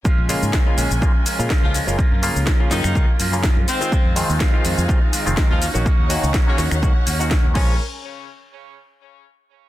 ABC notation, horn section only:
X:1
M:4/4
L:1/16
Q:"Swing 16ths" 1/4=124
K:Bbm
V:1 name="Horn section"
z12 z [F,F] z2 | z6 [E,E]3 z4 z C2- | C2 z8 z3 [F,F] z2 | z4 z [D,D] z8 [D,D]2 |
z16 |]